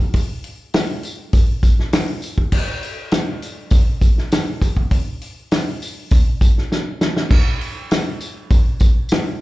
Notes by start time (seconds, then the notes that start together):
0.14 kick, open hi-hat, tambourine
0.44 open hi-hat
0.74 snare, open hi-hat, tambourine
1.03 open hi-hat, tambourine
1.33 kick, open hi-hat, tambourine
1.63 kick, open hi-hat, tambourine
1.79 snare
1.93 snare, open hi-hat, tambourine
2.22 open hi-hat, tambourine
2.38 kick
2.52 kick, crash, tambourine
2.83 open hi-hat
3.11 snare, open hi-hat, tambourine
3.42 open hi-hat, tambourine
3.71 kick, open hi-hat, tambourine
4.01 kick, open hi-hat, tambourine
4.18 snare
4.32 snare, open hi-hat, tambourine
4.62 kick, open hi-hat, tambourine
4.77 kick
4.91 kick, open hi-hat, tambourine
5.21 open hi-hat, tambourine
5.51 snare, open hi-hat, tambourine
5.82 open hi-hat, tambourine
6.11 kick, open hi-hat, tambourine
6.41 kick, open hi-hat, tambourine
6.58 snare
6.72 snare, tambourine
7.01 snare, tambourine
7.17 snare
7.31 kick, tambourine, crash
7.61 open hi-hat
7.91 snare, open hi-hat, tambourine
8.21 open hi-hat, tambourine
8.50 kick, open hi-hat, tambourine
8.80 kick, open hi-hat, tambourine
9.09 snare, open hi-hat, tambourine